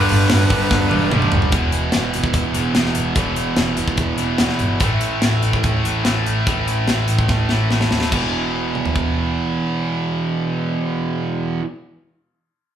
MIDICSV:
0, 0, Header, 1, 7, 480
1, 0, Start_track
1, 0, Key_signature, 1, "minor"
1, 0, Tempo, 410397
1, 1785, Time_signature, 4, 2, 24, 8
1, 5152, Tempo, 414079
1, 14829, End_track
2, 0, Start_track
2, 0, Title_t, "Lead electric guitar"
2, 0, Program_c, 0, 29
2, 0, Note_on_c, 0, 71, 86
2, 1261, Note_off_c, 0, 71, 0
2, 14829, End_track
3, 0, Start_track
3, 0, Title_t, "Tonewheel organ"
3, 0, Program_c, 1, 16
3, 0, Note_on_c, 1, 55, 73
3, 0, Note_on_c, 1, 62, 65
3, 0, Note_on_c, 1, 69, 79
3, 1749, Note_off_c, 1, 69, 0
3, 1751, Note_off_c, 1, 62, 0
3, 1754, Note_off_c, 1, 55, 0
3, 14829, End_track
4, 0, Start_track
4, 0, Title_t, "Distorted electric guitar"
4, 0, Program_c, 2, 30
4, 0, Note_on_c, 2, 43, 90
4, 0, Note_on_c, 2, 50, 94
4, 0, Note_on_c, 2, 55, 113
4, 1027, Note_off_c, 2, 55, 0
4, 1041, Note_on_c, 2, 55, 89
4, 1048, Note_off_c, 2, 43, 0
4, 1049, Note_off_c, 2, 50, 0
4, 1063, Note_on_c, 2, 50, 75
4, 1079, Note_on_c, 2, 43, 76
4, 1275, Note_off_c, 2, 43, 0
4, 1279, Note_off_c, 2, 55, 0
4, 1289, Note_on_c, 2, 43, 85
4, 1290, Note_off_c, 2, 50, 0
4, 1306, Note_on_c, 2, 50, 92
4, 1328, Note_on_c, 2, 55, 89
4, 1762, Note_off_c, 2, 43, 0
4, 1768, Note_on_c, 2, 40, 89
4, 1771, Note_off_c, 2, 50, 0
4, 1782, Note_off_c, 2, 55, 0
4, 1787, Note_on_c, 2, 47, 98
4, 1809, Note_on_c, 2, 52, 88
4, 2958, Note_off_c, 2, 52, 0
4, 2962, Note_off_c, 2, 40, 0
4, 2963, Note_on_c, 2, 52, 72
4, 2969, Note_off_c, 2, 47, 0
4, 2983, Note_on_c, 2, 47, 69
4, 3003, Note_on_c, 2, 40, 61
4, 3191, Note_off_c, 2, 40, 0
4, 3205, Note_on_c, 2, 40, 75
4, 3210, Note_off_c, 2, 47, 0
4, 3225, Note_on_c, 2, 47, 79
4, 3242, Note_off_c, 2, 52, 0
4, 3247, Note_on_c, 2, 52, 78
4, 3659, Note_off_c, 2, 40, 0
4, 3673, Note_on_c, 2, 40, 89
4, 3675, Note_off_c, 2, 47, 0
4, 3690, Note_on_c, 2, 47, 85
4, 3702, Note_off_c, 2, 52, 0
4, 3706, Note_on_c, 2, 52, 95
4, 4880, Note_off_c, 2, 40, 0
4, 4882, Note_off_c, 2, 52, 0
4, 4886, Note_on_c, 2, 52, 80
4, 4888, Note_off_c, 2, 47, 0
4, 4911, Note_on_c, 2, 47, 69
4, 4933, Note_on_c, 2, 40, 66
4, 5108, Note_off_c, 2, 40, 0
4, 5122, Note_on_c, 2, 40, 75
4, 5130, Note_off_c, 2, 47, 0
4, 5144, Note_on_c, 2, 47, 74
4, 5161, Note_off_c, 2, 52, 0
4, 5166, Note_on_c, 2, 52, 80
4, 5601, Note_off_c, 2, 40, 0
4, 5601, Note_off_c, 2, 47, 0
4, 5606, Note_on_c, 2, 45, 79
4, 5622, Note_off_c, 2, 52, 0
4, 5627, Note_on_c, 2, 52, 94
4, 5642, Note_on_c, 2, 57, 100
4, 6786, Note_off_c, 2, 57, 0
4, 6800, Note_on_c, 2, 57, 79
4, 6801, Note_off_c, 2, 45, 0
4, 6818, Note_off_c, 2, 52, 0
4, 6823, Note_on_c, 2, 52, 73
4, 6840, Note_on_c, 2, 45, 64
4, 7027, Note_off_c, 2, 45, 0
4, 7039, Note_off_c, 2, 57, 0
4, 7041, Note_on_c, 2, 45, 61
4, 7059, Note_off_c, 2, 52, 0
4, 7064, Note_on_c, 2, 52, 69
4, 7079, Note_on_c, 2, 57, 73
4, 7516, Note_off_c, 2, 45, 0
4, 7530, Note_on_c, 2, 45, 85
4, 7538, Note_off_c, 2, 57, 0
4, 7542, Note_off_c, 2, 52, 0
4, 7546, Note_on_c, 2, 52, 91
4, 7567, Note_on_c, 2, 57, 82
4, 8708, Note_off_c, 2, 57, 0
4, 8722, Note_on_c, 2, 57, 78
4, 8723, Note_off_c, 2, 45, 0
4, 8731, Note_off_c, 2, 52, 0
4, 8748, Note_on_c, 2, 52, 71
4, 8764, Note_on_c, 2, 45, 66
4, 8948, Note_off_c, 2, 45, 0
4, 8959, Note_off_c, 2, 57, 0
4, 8962, Note_on_c, 2, 45, 76
4, 8973, Note_off_c, 2, 52, 0
4, 8986, Note_on_c, 2, 52, 66
4, 8995, Note_on_c, 2, 57, 74
4, 9440, Note_off_c, 2, 45, 0
4, 9441, Note_on_c, 2, 40, 88
4, 9452, Note_off_c, 2, 52, 0
4, 9456, Note_off_c, 2, 57, 0
4, 9467, Note_on_c, 2, 47, 94
4, 9492, Note_on_c, 2, 52, 99
4, 13498, Note_off_c, 2, 40, 0
4, 13524, Note_off_c, 2, 47, 0
4, 13549, Note_off_c, 2, 52, 0
4, 14829, End_track
5, 0, Start_track
5, 0, Title_t, "Distorted electric guitar"
5, 0, Program_c, 3, 30
5, 591, Note_on_c, 3, 55, 99
5, 615, Note_on_c, 3, 50, 79
5, 632, Note_on_c, 3, 43, 75
5, 1275, Note_off_c, 3, 43, 0
5, 1293, Note_off_c, 3, 55, 0
5, 1301, Note_off_c, 3, 50, 0
5, 14829, End_track
6, 0, Start_track
6, 0, Title_t, "Double bass"
6, 0, Program_c, 4, 43
6, 130, Note_on_c, 4, 31, 95
6, 318, Note_off_c, 4, 31, 0
6, 365, Note_on_c, 4, 31, 105
6, 554, Note_off_c, 4, 31, 0
6, 586, Note_on_c, 4, 31, 88
6, 783, Note_off_c, 4, 31, 0
6, 831, Note_on_c, 4, 31, 88
6, 1025, Note_off_c, 4, 31, 0
6, 1079, Note_on_c, 4, 28, 90
6, 1269, Note_off_c, 4, 28, 0
6, 1313, Note_on_c, 4, 31, 89
6, 1506, Note_off_c, 4, 31, 0
6, 1565, Note_on_c, 4, 30, 98
6, 1753, Note_off_c, 4, 30, 0
6, 1784, Note_on_c, 4, 28, 97
6, 1952, Note_off_c, 4, 28, 0
6, 2020, Note_on_c, 4, 28, 79
6, 2189, Note_off_c, 4, 28, 0
6, 2283, Note_on_c, 4, 28, 89
6, 2445, Note_off_c, 4, 28, 0
6, 2515, Note_on_c, 4, 28, 93
6, 2680, Note_off_c, 4, 28, 0
6, 2727, Note_on_c, 4, 28, 91
6, 2901, Note_off_c, 4, 28, 0
6, 2978, Note_on_c, 4, 28, 83
6, 3149, Note_off_c, 4, 28, 0
6, 3208, Note_on_c, 4, 28, 82
6, 3382, Note_off_c, 4, 28, 0
6, 3452, Note_on_c, 4, 28, 91
6, 3625, Note_off_c, 4, 28, 0
6, 3693, Note_on_c, 4, 28, 95
6, 3866, Note_off_c, 4, 28, 0
6, 3923, Note_on_c, 4, 28, 82
6, 4100, Note_off_c, 4, 28, 0
6, 4172, Note_on_c, 4, 28, 96
6, 4346, Note_off_c, 4, 28, 0
6, 4410, Note_on_c, 4, 28, 87
6, 4585, Note_off_c, 4, 28, 0
6, 4645, Note_on_c, 4, 28, 82
6, 4822, Note_off_c, 4, 28, 0
6, 4891, Note_on_c, 4, 28, 74
6, 5067, Note_off_c, 4, 28, 0
6, 5135, Note_on_c, 4, 28, 86
6, 5309, Note_off_c, 4, 28, 0
6, 5370, Note_on_c, 4, 31, 87
6, 5545, Note_off_c, 4, 31, 0
6, 5618, Note_on_c, 4, 33, 86
6, 5790, Note_off_c, 4, 33, 0
6, 5849, Note_on_c, 4, 33, 78
6, 6023, Note_off_c, 4, 33, 0
6, 6090, Note_on_c, 4, 33, 92
6, 6264, Note_off_c, 4, 33, 0
6, 6343, Note_on_c, 4, 33, 82
6, 6512, Note_off_c, 4, 33, 0
6, 6583, Note_on_c, 4, 33, 88
6, 6752, Note_off_c, 4, 33, 0
6, 6822, Note_on_c, 4, 33, 82
6, 6991, Note_off_c, 4, 33, 0
6, 7055, Note_on_c, 4, 33, 82
6, 7227, Note_off_c, 4, 33, 0
6, 7309, Note_on_c, 4, 33, 83
6, 7476, Note_off_c, 4, 33, 0
6, 7544, Note_on_c, 4, 33, 89
6, 7712, Note_off_c, 4, 33, 0
6, 7771, Note_on_c, 4, 33, 76
6, 7944, Note_off_c, 4, 33, 0
6, 8022, Note_on_c, 4, 33, 91
6, 8191, Note_off_c, 4, 33, 0
6, 8270, Note_on_c, 4, 33, 89
6, 8436, Note_off_c, 4, 33, 0
6, 8499, Note_on_c, 4, 33, 73
6, 8669, Note_off_c, 4, 33, 0
6, 8751, Note_on_c, 4, 33, 75
6, 8917, Note_off_c, 4, 33, 0
6, 8984, Note_on_c, 4, 33, 85
6, 9153, Note_off_c, 4, 33, 0
6, 9221, Note_on_c, 4, 39, 82
6, 9390, Note_off_c, 4, 39, 0
6, 9462, Note_on_c, 4, 28, 88
6, 13197, Note_off_c, 4, 28, 0
6, 14829, End_track
7, 0, Start_track
7, 0, Title_t, "Drums"
7, 102, Note_on_c, 9, 46, 76
7, 219, Note_off_c, 9, 46, 0
7, 347, Note_on_c, 9, 38, 124
7, 347, Note_on_c, 9, 46, 95
7, 464, Note_off_c, 9, 38, 0
7, 464, Note_off_c, 9, 46, 0
7, 586, Note_on_c, 9, 46, 79
7, 588, Note_on_c, 9, 36, 93
7, 703, Note_off_c, 9, 46, 0
7, 705, Note_off_c, 9, 36, 0
7, 828, Note_on_c, 9, 36, 97
7, 832, Note_on_c, 9, 38, 64
7, 945, Note_off_c, 9, 36, 0
7, 949, Note_off_c, 9, 38, 0
7, 1064, Note_on_c, 9, 48, 86
7, 1181, Note_off_c, 9, 48, 0
7, 1304, Note_on_c, 9, 47, 106
7, 1421, Note_off_c, 9, 47, 0
7, 1427, Note_on_c, 9, 45, 93
7, 1540, Note_on_c, 9, 43, 105
7, 1544, Note_off_c, 9, 45, 0
7, 1657, Note_off_c, 9, 43, 0
7, 1662, Note_on_c, 9, 43, 87
7, 1778, Note_off_c, 9, 43, 0
7, 1778, Note_on_c, 9, 42, 88
7, 1783, Note_on_c, 9, 36, 112
7, 1895, Note_off_c, 9, 42, 0
7, 1900, Note_off_c, 9, 36, 0
7, 2015, Note_on_c, 9, 42, 67
7, 2132, Note_off_c, 9, 42, 0
7, 2247, Note_on_c, 9, 38, 111
7, 2247, Note_on_c, 9, 42, 86
7, 2364, Note_off_c, 9, 38, 0
7, 2364, Note_off_c, 9, 42, 0
7, 2497, Note_on_c, 9, 42, 68
7, 2614, Note_off_c, 9, 42, 0
7, 2614, Note_on_c, 9, 36, 74
7, 2731, Note_off_c, 9, 36, 0
7, 2731, Note_on_c, 9, 42, 79
7, 2735, Note_on_c, 9, 36, 89
7, 2848, Note_off_c, 9, 42, 0
7, 2852, Note_off_c, 9, 36, 0
7, 2975, Note_on_c, 9, 42, 64
7, 3092, Note_off_c, 9, 42, 0
7, 3213, Note_on_c, 9, 38, 108
7, 3213, Note_on_c, 9, 42, 87
7, 3330, Note_off_c, 9, 38, 0
7, 3330, Note_off_c, 9, 42, 0
7, 3337, Note_on_c, 9, 38, 34
7, 3448, Note_on_c, 9, 42, 64
7, 3454, Note_off_c, 9, 38, 0
7, 3565, Note_off_c, 9, 42, 0
7, 3690, Note_on_c, 9, 42, 85
7, 3693, Note_on_c, 9, 36, 112
7, 3807, Note_off_c, 9, 42, 0
7, 3810, Note_off_c, 9, 36, 0
7, 3933, Note_on_c, 9, 42, 68
7, 4050, Note_off_c, 9, 42, 0
7, 4170, Note_on_c, 9, 38, 107
7, 4170, Note_on_c, 9, 42, 88
7, 4287, Note_off_c, 9, 38, 0
7, 4287, Note_off_c, 9, 42, 0
7, 4407, Note_on_c, 9, 42, 63
7, 4524, Note_off_c, 9, 42, 0
7, 4533, Note_on_c, 9, 36, 66
7, 4645, Note_on_c, 9, 42, 70
7, 4650, Note_off_c, 9, 36, 0
7, 4651, Note_on_c, 9, 36, 86
7, 4762, Note_off_c, 9, 42, 0
7, 4768, Note_off_c, 9, 36, 0
7, 4885, Note_on_c, 9, 42, 64
7, 5002, Note_off_c, 9, 42, 0
7, 5127, Note_on_c, 9, 38, 115
7, 5127, Note_on_c, 9, 42, 82
7, 5243, Note_off_c, 9, 38, 0
7, 5243, Note_off_c, 9, 42, 0
7, 5249, Note_on_c, 9, 38, 32
7, 5365, Note_off_c, 9, 38, 0
7, 5365, Note_on_c, 9, 42, 53
7, 5481, Note_off_c, 9, 42, 0
7, 5608, Note_on_c, 9, 42, 78
7, 5616, Note_on_c, 9, 36, 105
7, 5724, Note_off_c, 9, 42, 0
7, 5732, Note_off_c, 9, 36, 0
7, 5849, Note_on_c, 9, 42, 57
7, 5965, Note_off_c, 9, 42, 0
7, 6094, Note_on_c, 9, 38, 116
7, 6094, Note_on_c, 9, 42, 79
7, 6210, Note_off_c, 9, 38, 0
7, 6210, Note_off_c, 9, 42, 0
7, 6334, Note_on_c, 9, 42, 56
7, 6450, Note_off_c, 9, 42, 0
7, 6461, Note_on_c, 9, 36, 74
7, 6577, Note_off_c, 9, 36, 0
7, 6578, Note_on_c, 9, 42, 73
7, 6583, Note_on_c, 9, 36, 77
7, 6694, Note_off_c, 9, 42, 0
7, 6699, Note_off_c, 9, 36, 0
7, 6828, Note_on_c, 9, 42, 61
7, 6944, Note_off_c, 9, 42, 0
7, 7057, Note_on_c, 9, 38, 112
7, 7057, Note_on_c, 9, 42, 86
7, 7173, Note_off_c, 9, 38, 0
7, 7173, Note_off_c, 9, 42, 0
7, 7306, Note_on_c, 9, 42, 56
7, 7422, Note_off_c, 9, 42, 0
7, 7544, Note_on_c, 9, 36, 111
7, 7544, Note_on_c, 9, 42, 77
7, 7660, Note_off_c, 9, 36, 0
7, 7660, Note_off_c, 9, 42, 0
7, 7785, Note_on_c, 9, 42, 63
7, 7901, Note_off_c, 9, 42, 0
7, 8016, Note_on_c, 9, 38, 105
7, 8016, Note_on_c, 9, 42, 78
7, 8132, Note_off_c, 9, 38, 0
7, 8132, Note_off_c, 9, 42, 0
7, 8249, Note_on_c, 9, 42, 64
7, 8365, Note_off_c, 9, 42, 0
7, 8375, Note_on_c, 9, 36, 70
7, 8490, Note_on_c, 9, 38, 50
7, 8491, Note_off_c, 9, 36, 0
7, 8498, Note_on_c, 9, 36, 90
7, 8606, Note_off_c, 9, 38, 0
7, 8614, Note_off_c, 9, 36, 0
7, 8730, Note_on_c, 9, 38, 69
7, 8846, Note_off_c, 9, 38, 0
7, 8978, Note_on_c, 9, 38, 76
7, 9094, Note_off_c, 9, 38, 0
7, 9098, Note_on_c, 9, 38, 70
7, 9213, Note_off_c, 9, 38, 0
7, 9213, Note_on_c, 9, 38, 80
7, 9328, Note_off_c, 9, 38, 0
7, 9336, Note_on_c, 9, 38, 76
7, 9452, Note_off_c, 9, 38, 0
7, 9459, Note_on_c, 9, 36, 92
7, 9462, Note_on_c, 9, 49, 83
7, 9575, Note_off_c, 9, 36, 0
7, 9578, Note_off_c, 9, 49, 0
7, 10191, Note_on_c, 9, 47, 54
7, 10306, Note_off_c, 9, 47, 0
7, 10310, Note_on_c, 9, 43, 71
7, 10426, Note_off_c, 9, 43, 0
7, 10427, Note_on_c, 9, 36, 70
7, 10543, Note_off_c, 9, 36, 0
7, 14829, End_track
0, 0, End_of_file